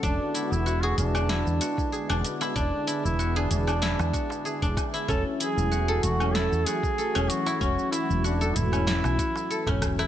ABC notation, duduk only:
X:1
M:4/4
L:1/16
Q:"Swing 16ths" 1/4=95
K:Emix
V:1 name="Duduk"
D3 E2 F D8 z2 | D3 E2 D D8 z2 | A2 G4 F2 A2 G4 F2 | F2 E2 D2 E8 z2 |]